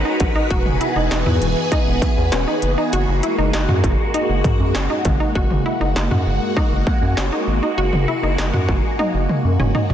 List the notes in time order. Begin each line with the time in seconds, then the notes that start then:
Already playing: G#3 D#4 F#4 A#4 B4
0.05 D#4
0.20 A#1, kick, closed hi-hat
0.36 D#4
0.51 E1 E3 B3 F#4 G#4, kick, closed hi-hat
0.66 E1, mid tom
0.81 E4, closed hi-hat
0.96 E1 D#4
1.11 E1 D#4, snare, closed hi-hat
1.26 E2 E4, mid tom
1.41 E1, closed hi-hat
1.72 D#4, kick, closed hi-hat
1.87 E1
2.02 kick, closed hi-hat
2.17 E2
2.32 E1 C#4, snare, closed hi-hat
2.48 D#4
2.62 F#1, closed hi-hat
2.78 D#4
2.93 F#1 G#3 A#3 F#4, closed hi-hat
3.08 F#1
3.23 E4, closed hi-hat
3.38 F#1 D#4
3.53 F#1 D#4, snare, closed hi-hat
3.68 F#2 F#4, mid tom
3.84 F#1, kick, closed hi-hat
4.14 D#4, closed hi-hat
4.29 F#1
4.44 kick, closed hi-hat, mid tom
4.60 F#2
4.75 F#1 C#4, snare, closed hi-hat
4.90 D#4
5.05 G#1, kick, closed hi-hat, mid tom
5.20 D#4
5.35 F#1 G#3 A#3 F#4, kick
5.51 F#1, mid tom
5.66 E4
5.81 F#1 D#4
5.96 F#1 D#4, snare
6.11 F#2 F#4, mid tom
6.26 F#1
6.57 D#4, kick
6.72 F#1
6.87 kick
7.02 F#2
7.17 F#1 C#4, snare
7.32 D#4
7.47 G#1
7.63 D#4
7.78 F#1 F#4
7.93 F#1, mid tom
8.08 E4
8.23 F#1 D#4
8.38 F#1 D#4, snare
8.53 F#2 F#4, mid tom
8.69 F#1, kick
8.99 D#4, high tom
9.14 F#1
9.29 mid tom
9.45 F#2
9.60 F#1 C#4, mid tom
9.75 D#4, mid tom
9.90 G#1, floor tom